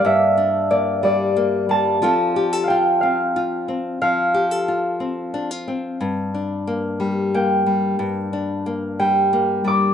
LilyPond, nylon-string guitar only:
\new Staff \with { instrumentName = "Nylon-string guitar" } { \time 6/8 \key g \dorian \tempo 4. = 60 << { <bes d'>8 d'8 bes4 bes4 | <c' f' a'>8 g'16 a'16 f'4 f'4 | r8 g'16 a'16 f'4 d'16 f'8. | r8 d'8 bes4 bes4~ |
bes8 d'8 bes4 bes4 | } \\ { g,4. g4 g8 | f4. c'4 c'8 | f4. c'4 c'8 | g,4. g4 g8 |
g,4. g4 g8 | } >> }